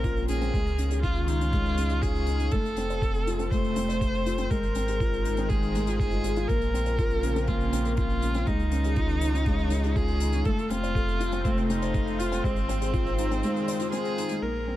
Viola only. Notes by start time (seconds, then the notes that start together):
Already playing: A#4
0.28 G#4
1.03 F4
1.27 F4
2.02 G#4
2.52 A4
3.51 C5
4.50 A#4
5.49 G#4
5.99 G#4
6.48 A#4
7.48 F4
7.98 F4
8.46 D#4
9.95 G#4
10.45 A4
10.70 F4
11.44 C4
11.69 D#4
12.19 F4
12.44 C4
13.92 G#4
14.42 A#4